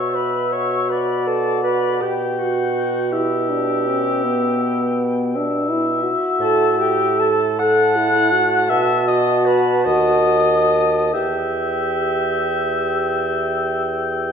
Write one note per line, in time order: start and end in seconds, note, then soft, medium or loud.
0.00 1.99 B2 soft
0.00 3.08 F#4 medium
0.00 0.16 C#5 medium
0.00 0.91 E5 medium
0.00 0.16 C#6 medium
0.15 0.54 B4 medium
0.15 0.54 B5 medium
0.52 0.91 C#5 medium
0.52 0.91 C#6 medium
0.90 1.28 B4 medium
0.90 2.04 D5 medium
0.90 1.29 B5 soft
1.27 1.63 A4 medium
1.27 1.64 A5 medium
1.64 2.03 B4 medium
1.64 2.03 B5 medium
2.01 6.09 B2 medium
2.01 2.41 G4 medium
2.01 2.40 G5 medium
2.01 3.14 G5 medium
2.39 3.13 F#4 medium
2.39 3.13 F#5 medium
3.12 3.51 E4 medium
3.12 6.04 G4 medium
3.12 5.09 E5 soft
3.12 6.04 G5 medium
3.50 3.89 D4 medium
3.87 4.26 C#4 medium
4.24 5.37 B3 medium
5.35 5.72 D4 medium
5.35 7.56 E5 medium
5.70 6.05 E4 medium
6.03 7.31 F#4 medium
6.39 8.72 A2 medium
6.39 6.80 A4 medium
6.39 6.76 A5 medium
6.79 7.21 G4 medium
6.79 7.21 G5 medium
7.19 7.59 A4 medium
7.19 7.61 A5 medium
7.59 7.98 A4 medium
7.59 8.71 F#5 loud
7.59 8.69 A5 medium
7.59 8.71 F#6 medium
7.96 8.34 E4 medium
8.32 11.14 F#4 medium
8.69 9.85 B2 medium
8.69 9.07 E5 medium
8.69 11.10 A5 medium
8.69 9.10 E6 medium
9.07 9.47 D#5 medium
9.07 9.49 D#6 medium
9.45 9.87 B4 medium
9.45 9.85 B5 medium
9.86 11.15 D#2 medium
9.86 11.13 D#5 medium
9.86 11.15 D#6 medium
11.13 14.32 E2 medium
11.13 14.32 G4 soft
11.13 14.32 E5 medium
11.13 14.32 G5 soft
11.13 14.32 E6 medium